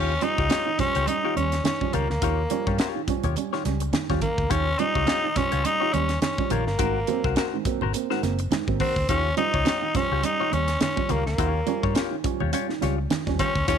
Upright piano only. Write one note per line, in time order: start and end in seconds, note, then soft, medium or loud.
0.21 0.34 F3 medium
0.21 0.34 G3 medium
0.21 0.34 C#4 loud
0.38 0.43 G3 soft
0.38 0.43 C#4 soft
0.50 0.57 G3 soft
0.50 0.57 C#4 soft
0.66 0.76 D#3 medium
0.78 0.91 F3 medium
0.78 0.91 G3 medium
0.78 0.91 C#4 medium
1.07 1.19 G3 medium
1.07 1.20 C#4 medium
1.24 1.33 D#3 medium
1.36 1.48 G3 medium
1.36 1.48 C#4 medium
1.65 1.77 D#3 medium
1.81 1.90 F3 medium
1.81 1.90 G3 medium
1.81 1.91 C#4 medium
1.93 2.00 G3 soft
1.93 2.00 C#4 soft
2.22 2.34 D#3 medium
2.50 2.62 F3 medium
2.50 2.63 G3 medium
2.50 2.63 C#4 medium
2.67 2.72 G3 soft
2.67 2.72 C#4 soft
2.79 2.86 G3 soft
2.79 2.86 C#4 soft
2.95 3.05 D#3 medium
3.08 3.20 F3 medium
3.08 3.20 G3 medium
3.08 3.20 C#4 medium
3.37 3.49 G3 medium
3.37 3.49 C#4 medium
3.53 3.62 D#3 medium
3.66 3.77 G3 medium
3.66 3.78 C#4 medium
3.94 4.06 D#3 medium
4.10 4.19 F3 medium
4.10 4.19 G3 medium
4.10 4.19 C#4 medium
4.22 4.29 G3 soft
4.22 4.29 C#4 soft
4.51 4.63 D#3 medium
4.79 4.91 F3 medium
4.79 4.91 G3 medium
4.79 4.92 C#4 loud
4.95 5.00 G3 soft
4.95 5.01 C#4 soft
5.08 5.15 G3 soft
5.08 5.14 C#4 soft
5.24 5.33 D#3 medium
5.36 5.48 F3 medium
5.36 5.49 G3 medium
5.36 5.49 C#4 medium
5.65 5.77 G3 medium
5.65 5.77 C#4 medium
5.82 5.91 D#3 medium
5.94 6.06 G3 medium
5.94 6.06 C#4 medium
6.23 6.35 D#3 medium
6.39 6.48 F3 medium
6.39 6.48 G3 medium
6.39 6.48 C#4 medium
6.51 6.58 G3 soft
6.51 6.58 C#4 soft
6.80 6.92 G#2 medium
6.80 6.92 D#3 medium
7.08 7.20 F#3 medium
7.08 7.20 A#3 medium
7.08 7.20 C4 loud
7.25 7.30 A#3 soft
7.25 7.30 C4 soft
7.37 7.43 A#3 soft
7.37 7.43 C4 soft
7.53 7.63 G#2 medium
7.53 7.63 D#3 medium
7.66 7.78 F#3 medium
7.66 7.78 A#3 medium
7.66 7.78 C4 medium
7.94 8.06 A#3 medium
7.94 8.06 C4 medium
8.10 8.20 G#2 soft
8.10 8.20 D#3 medium
8.23 8.35 A#3 medium
8.23 8.35 C4 medium
8.52 8.64 G#2 medium
8.52 8.63 D#3 medium
8.68 8.77 F#3 medium
8.68 8.77 A#3 medium
8.68 8.77 C4 medium
8.80 8.87 A#3 soft
8.80 8.87 C4 soft
9.09 9.21 D#3 medium
9.37 9.49 F3 medium
9.37 9.49 G3 medium
9.37 9.49 C#4 loud
9.53 9.59 G3 soft
9.53 9.59 C#4 soft
9.66 9.72 G3 soft
9.66 9.72 C#4 soft
9.82 9.91 D#3 medium
9.94 10.06 F3 medium
9.94 10.07 G3 medium
9.94 10.07 C#4 medium
10.23 10.35 G3 medium
10.23 10.36 C#4 medium
10.40 10.49 D#3 medium
10.52 10.64 G3 medium
10.52 10.64 C#4 medium
10.81 10.93 D#3 medium
10.96 11.06 F3 medium
10.96 11.06 G3 medium
10.96 11.06 C#4 medium
11.09 11.16 G3 soft
11.09 11.16 C#4 soft
11.38 11.50 D#3 medium
11.66 11.79 F3 medium
11.66 11.79 G3 medium
11.66 11.79 C#4 loud
11.83 11.88 G3 soft
11.83 11.88 C#4 soft
11.95 12.02 G3 soft
11.95 12.02 C#4 soft
12.11 12.21 D#3 medium
12.24 12.36 F3 medium
12.24 12.36 G3 medium
12.24 12.36 C#4 medium
12.52 12.65 G3 medium
12.52 12.65 C#4 medium
12.69 12.79 D#3 medium
12.81 12.94 G3 medium
12.81 12.94 C#4 medium
13.11 13.23 D#3 medium
13.26 13.36 F3 medium
13.26 13.36 G3 medium
13.26 13.36 C#4 medium
13.40 13.46 G3 soft
13.40 13.46 C#4 soft
13.68 13.78 D#3 medium